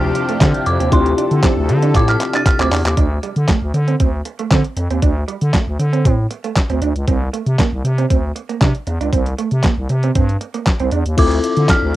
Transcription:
Already playing: D2 C3 F3 C4 D4 E4 F4 G4 F6
0.15 muted clean electric guitar stroke, closed hi-hat
0.29 A3, closed hi-hat
0.41 D3 C4, kick, snare, clap, closed hi-hat
0.54 closed hi-hat
0.66 F2 D6, muted clean electric guitar stroke, closed hi-hat
0.80 D#2 C4, closed hi-hat
0.91 D2 C4 D4 E4 F4 G4 A4 C6, kick, closed hi-hat
1.06 muted clean electric guitar stroke, closed hi-hat
1.18 D4, closed hi-hat
1.31 D3, closed hi-hat
1.43 C4, kick, snare, clap, closed hi-hat
1.57 D2
1.69 D3, muted clean electric guitar stroke, closed hi-hat
1.82 D4, closed hi-hat
1.95 A2 F4 D6, kick, clap, closed hi-hat
2.08 F6, clap, closed hi-hat
2.20 muted clean electric guitar stroke, clap, closed hi-hat
2.33 D4 A6, clap, closed hi-hat
2.46 F6, muted clean electric guitar stroke, kick, clap, closed hi-hat
2.59 D2 C4 D6, clap, closed hi-hat
2.71 E2 D4, clap, open hi-hat
2.85 D#2, clap, closed hi-hat
2.97 D2 D4, kick, closed hi-hat
3.11 muted clean electric guitar stroke
3.23 G3, closed hi-hat
3.36 D3, closed hi-hat
3.48 A3, kick, snare, clap, closed hi-hat
3.62 D2
3.74 D3, muted clean electric guitar stroke, closed hi-hat
3.88 C4, closed hi-hat
4.00 D2 C4, kick, closed hi-hat
4.25 muted clean electric guitar stroke, closed hi-hat
4.39 A3, closed hi-hat
4.51 D3 C4, kick, snare, clap, closed hi-hat
4.64 closed hi-hat
4.77 F2, muted clean electric guitar stroke, closed hi-hat
4.90 D#2 C4, closed hi-hat
5.02 D2 D4, kick, closed hi-hat
5.16 muted clean electric guitar stroke
5.28 G3, closed hi-hat
5.41 D3, closed hi-hat
5.53 A3, kick, snare, clap, closed hi-hat
5.68 D2
5.79 D3, muted clean electric guitar stroke, closed hi-hat
5.93 C4, closed hi-hat
6.05 A2 C4, kick, closed hi-hat
6.31 muted clean electric guitar stroke, closed hi-hat
6.44 A3, closed hi-hat
6.56 muted clean electric guitar stroke, kick, snare, clap, closed hi-hat
6.70 D2 C4, closed hi-hat
6.82 D2 D4, closed hi-hat
6.95 C#2, closed hi-hat
7.08 C2 C4, kick, closed hi-hat
7.22 muted clean electric guitar stroke
7.33 A3, closed hi-hat
7.46 C3, closed hi-hat
7.59 A#3, kick, snare, clap, closed hi-hat
7.73 C2
7.85 C3, muted clean electric guitar stroke, closed hi-hat
7.98 C4, closed hi-hat
8.10 D2 C4, kick, closed hi-hat
8.36 muted clean electric guitar stroke, closed hi-hat
8.49 A#3, closed hi-hat
8.61 C3 D4, kick, snare, clap, closed hi-hat
8.75 closed hi-hat
8.87 E2, muted clean electric guitar stroke, closed hi-hat
9.01 C#2 D4, closed hi-hat
9.13 C2 C4, kick, closed hi-hat
9.26 muted clean electric guitar stroke, closed hi-hat
9.38 A3, closed hi-hat
9.51 C3, closed hi-hat
9.63 A#3, kick, snare, clap, closed hi-hat
9.78 C2
9.89 C3, muted clean electric guitar stroke, closed hi-hat
10.03 C4, closed hi-hat
10.15 G2 C4, kick, closed hi-hat
10.29 closed hi-hat
10.41 muted clean electric guitar stroke, closed hi-hat
10.54 A#3, closed hi-hat
10.66 muted clean electric guitar stroke, kick, snare, clap, closed hi-hat
10.80 C2 C4, closed hi-hat
10.91 E2 D4, closed hi-hat
11.06 D#2, closed hi-hat
11.17 D2 C3 F3 C4 D4 E4 F4 A4 D6, kick, closed hi-hat, crash
11.31 closed hi-hat
11.44 closed hi-hat
11.57 D3, closed hi-hat
11.69 F6, kick, snare, clap, closed hi-hat
11.83 D2

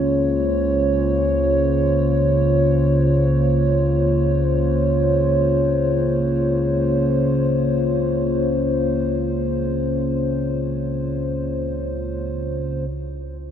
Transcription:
Already playing: C#2 C#3 A#3 F4 C5 C#5
12.90 C#2 C#3 C#4 E4

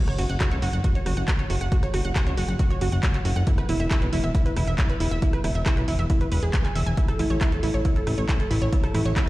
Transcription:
0.08 C#5, cross-stick, closed hi-hat
0.18 F#1 F#4, open hi-hat
0.29 F#1 F#5, closed hi-hat
0.40 F#4, kick, cross-stick, clap, closed hi-hat
0.51 C#2 C#5, closed hi-hat
0.62 F#1 F#4, open hi-hat
0.73 F#1 F#5, closed hi-hat
0.84 F#4, kick, closed hi-hat
0.95 C#5, closed hi-hat
1.06 F#1 F#4, cross-stick, open hi-hat
1.17 F#1 F#5, closed hi-hat
1.28 F#4, kick, clap, closed hi-hat
1.39 C#5, closed hi-hat
1.50 F#1 F#4, open hi-hat
1.61 F#1 F#5, closed hi-hat
1.72 F#4, kick, closed hi-hat
1.83 C#5, cross-stick, closed hi-hat
1.94 F#1 F#4, cross-stick, open hi-hat
2.05 F#1 F#5, closed hi-hat
2.16 F#4, kick, cross-stick, clap, closed hi-hat
2.27 C#2 C#5, closed hi-hat
2.37 F#1 F#4, open hi-hat
2.48 F#1 F#5, closed hi-hat
2.59 F#4, kick, closed hi-hat
2.70 C#5, closed hi-hat
2.81 F#1 F#4, open hi-hat
2.92 F#1 F#5, closed hi-hat
3.03 F#4, kick, clap, closed hi-hat
3.14 C#5, clap, closed hi-hat
3.25 F#1 F#4, open hi-hat
3.36 F#1 F#5, closed hi-hat
3.47 E4, kick, closed hi-hat
3.58 B4, cross-stick, closed hi-hat
3.69 E1 E4, open hi-hat
3.80 E1 E5, closed hi-hat
3.91 E4, kick, cross-stick, clap, closed hi-hat
4.02 B1 B4, closed hi-hat
4.13 E1 E4, open hi-hat
4.24 E1 E5, closed hi-hat
4.35 E4, kick, closed hi-hat
4.46 B4, closed hi-hat
4.56 E1 E4, cross-stick, open hi-hat
4.67 E1 E5, closed hi-hat
4.78 E4, kick, clap, closed hi-hat
4.89 B4, closed hi-hat
5.00 E1 E4, open hi-hat
5.11 E1 E5
5.22 E4, kick, closed hi-hat
5.33 B4, cross-stick, closed hi-hat
5.44 E1 E4, cross-stick, open hi-hat
5.55 E1 E5, closed hi-hat
5.66 E4, kick, cross-stick, clap, closed hi-hat
5.77 B1 B4, closed hi-hat
5.88 E1 E4, open hi-hat
5.99 E1 E5, closed hi-hat
6.10 E4, kick, closed hi-hat
6.21 B4, closed hi-hat
6.32 E1 B4, open hi-hat
6.43 E1 G#4, closed hi-hat
6.54 G#4, kick, clap, closed hi-hat
6.64 G#5, clap, closed hi-hat
6.75 E1 E5, open hi-hat
6.86 E1 G#5, closed hi-hat
6.97 E4, kick, closed hi-hat
7.08 A4, cross-stick, closed hi-hat
7.19 A1 E4, open hi-hat
7.30 A1 C#5, closed hi-hat
7.41 E4, kick, cross-stick, clap, closed hi-hat
7.52 E2 A4, closed hi-hat
7.63 A1 E4, open hi-hat
7.74 A1 C#5
7.85 E4, kick, closed hi-hat
7.96 A4, closed hi-hat
8.07 A1 E4, cross-stick, open hi-hat
8.18 A1 C#5, closed hi-hat
8.29 E4, kick, clap, closed hi-hat
8.40 A4, closed hi-hat
8.51 A1 E4, open hi-hat
8.62 A1 C#5
8.72 E4, kick, closed hi-hat
8.83 A4, cross-stick, closed hi-hat
8.94 A1 E4, cross-stick, open hi-hat
9.05 A1 C#5, closed hi-hat
9.16 E4, kick, cross-stick, clap, closed hi-hat

